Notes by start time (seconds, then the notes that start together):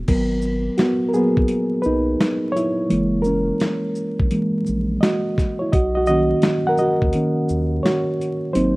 0.08 G#1 F#3 B3 A#4, kick, closed hi-hat, crash
0.42 shaker
0.78 B3 F#4, snare, closed hi-hat
1.09 A#4
1.14 F#3 A#3 B3 G#4, shaker
1.37 B1, kick
1.48 closed hi-hat
1.82 D#4 B4, shaker
1.86 B1
2.20 snare, closed hi-hat
2.52 C#5
2.56 E4, closed hi-hat, shaker
2.89 F#1 E3 G#3 A#3, closed hi-hat
3.22 A#4, shaker
3.27 C#4
3.60 snare, closed hi-hat
3.95 shaker
4.20 A#1, kick
4.31 E3 G#3 A#3, closed hi-hat
4.66 A#1, shaker
5.01 F#4 D#5, snare, closed hi-hat
5.38 kick, snare, closed hi-hat, shaker
5.59 E4 C#5
5.72 B1 F#4 D#5, kick, closed hi-hat
5.95 F#4 D#5
6.06 D#3 A#3 C#4 F#4 D#5, shaker
6.42 snare, closed hi-hat
6.67 A#4 F#5
6.78 F#4 D#5, shaker
7.02 D#2, kick
7.13 D#3 A#3 C#4, closed hi-hat
7.49 D#2, shaker
7.83 F#4 C#5, snare, closed hi-hat
8.21 closed hi-hat, shaker
8.53 G#1 F#3 A#3 C4 D#4 C5, closed hi-hat